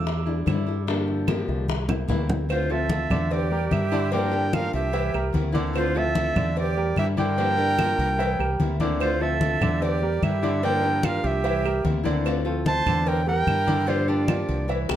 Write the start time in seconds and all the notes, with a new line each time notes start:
Already playing: E2
0.07 muted nylon-string guitar stroke, high bongo, high conga
0.26 G3 D4 E4, high bongo, high conga
0.46 G2 D3 G3 D4 E4, high bongo, low bongo, high conga, claves
0.66 G3 D4 E4, high bongo
0.87 D3 F3 A#3 D4 G4, high bongo, high conga
1.08 high conga
1.27 D3 F3 A#3 D4 G4, high bongo, high conga, claves
1.48 C2, high bongo, high conga
1.68 muted nylon-string guitar stroke, high bongo, high conga
1.88 A#3 C4 E4, high bongo, low conga, claves
2.08 D2 C3 E3 A#3 C4 E4, high bongo, low bongo, low conga
2.29 A#3 C4 E4, high bongo, low conga
2.49 D3 A3 C4 F4 C5, cowbell, high conga, claves
2.70 F3 A3 C4 F4 A4 E5, high conga
2.89 D3 A3 C4 F4, cowbell, high conga
3.10 E2 D3 D4 D5, cowbell, high conga, low conga, claves
3.30 G4 D5, muted nylon-string guitar stroke, cowbell, high conga
3.51 G3 G4 A#4, high conga
3.71 G2 D3 G3 D4 E4 G4 E5, cowbell, high conga, claves
3.92 D3 G3 D4 E4 D5, cowbell
4.12 D3 F3 A#3 D4 G4 A#4 D5 G5, cowbell, high conga
4.31 F3 A#3 D4 G4, high conga
4.52 F3 A#3 D4 F4 G4 A#4 F5, cowbell, high conga, claves
4.73 C2 G4 E5, cowbell, high conga
4.92 E3 E4 E5, muted nylon-string guitar stroke, cowbell, high conga
5.14 C2 G3 G4 A#4, high conga, claves
5.33 D2 E3 A#3 C4 E4, cowbell, high conga
5.52 D3 E3 A#3 C4 D4 E4 D5, cowbell, high conga
5.73 D3 A3 C4 F4 C5, cowbell, high conga, claves
5.95 F3 A3 C4 F4 A4 E5, high conga
6.15 D3 A3 C4 F4, cowbell, high conga
6.36 E2 D3 D4 D5, cowbell, high conga, low conga, claves
6.56 G4 D5, muted nylon-string guitar stroke, cowbell, high conga
6.77 G3 G4 A#4, high conga
6.96 G2 D3 G3 D4 E4 G4 E5, cowbell, high conga, claves
7.17 D3 G3 D4 E4 A#4 D5 G5, cowbell, high conga
7.37 D3 F3 A#3 D4 G4 D5, cowbell, high conga
7.57 F3 A#3 D4 G4, high conga
7.78 F3 A#3 D4 F4 G4, cowbell, high conga, claves
7.98 C2, cowbell, high conga
8.18 E3 E4 E5, muted nylon-string guitar stroke, cowbell, high conga
8.39 C2 G3 G4 A#4, high conga, claves
8.60 D2 E3 A#3 C4 E4, cowbell, high conga
8.80 D3 E3 A#3 C4 D4 E4 D5, cowbell, high conga
9.00 D3 A3 C4 F4 C5, cowbell, high conga, claves
9.20 F3 A3 C4 F4 A4 E5, high conga
9.41 D3 A3 C4 F4, cowbell, high conga
9.61 E2 D3 D4 D5, cowbell, high conga, low conga, claves
9.82 G4 D5, muted nylon-string guitar stroke, cowbell, high conga
10.02 G3 G4 A#4, high conga
10.22 G2 D3 G3 D4 E4 G4 E5, cowbell, high conga, claves
10.42 D3 G3 D4 E4 D5, cowbell
10.62 D3 F3 A#3 D4 G4 A#4 D5 G5, cowbell, high conga
10.83 F3 A#3 D4 G4, high conga
11.03 F3 A#3 D4 F4 G4 A#4 F5, cowbell, high conga, claves
11.24 C2 G4 E5, cowbell, high conga
11.44 E3 E4 E5, muted nylon-string guitar stroke, cowbell, high conga
11.64 G3 G4 A#4, high conga, claves
11.84 D2 E3 A#3 C4 E4, cowbell, high conga
12.04 D3 E3 A#3 C4 D4 E4 D5, cowbell, high conga
12.24 D3 A3 C4 F4, cowbell, high conga, claves
12.45 F3 A3 C4 F4 A4, high conga
12.66 A3 C4 F4 C5 A5, cowbell, high conga
12.86 E2 D3 D4 D5, cowbell, high conga, low conga, claves
13.06 A#4 G5, muted nylon-string guitar stroke, cowbell, high conga
13.26 G3 G4 A#4 G5, high conga
13.47 G2 D3 G3 D4 E4, cowbell, high conga, claves
13.67 D3 G3 D4 E4 D5, cowbell, high conga
13.86 D3 F3 A#3 D4 F4 G4 C5 D5, cowbell, high conga
14.07 F3 A#3 D4 F4 G4 D5, high conga
14.28 F3 A#3 D4 F4 G4, cowbell, high conga, claves
14.49 C2, cowbell, high conga
14.68 E3 E4 E5, muted nylon-string guitar stroke, cowbell, high conga
14.89 C2 G3 G4 A#4, high bongo, high conga, claves